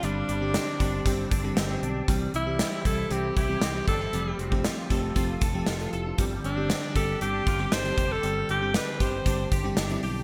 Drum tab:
HH |x-x-x-x-x-x-x-x-|x-x-x-x-x-x-x-x-|x-x-x-x-x-x-xxx-|x-x-x-x-x-x-xxx-|
SD |----o-------o---|----o-------o---|----o-------o---|----o-------o---|
BD |------o-o-o-----|o-----o---o---o-|---o--o-o-o-----|o-----o---o---o-|

HH |x-x-x-x-x-x-xxo-|
SD |----o-------o---|
BD |------o-o-o-----|